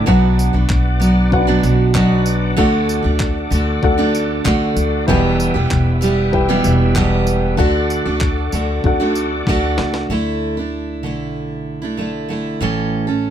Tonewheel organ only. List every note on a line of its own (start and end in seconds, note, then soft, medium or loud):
0.00 2.54 D6 medium
0.07 2.55 B4 medium
0.07 2.55 D5 medium
0.07 5.04 F#5 medium
2.58 5.06 A4 medium
2.58 5.06 D5 medium
2.58 5.06 D6 medium
5.08 7.56 B4 medium
5.08 7.56 E5 medium
5.08 7.56 G5 medium
5.08 7.56 E6 medium
7.59 10.07 A4 medium
7.59 10.07 D5 medium
7.59 10.07 F#5 medium
7.59 10.07 D6 medium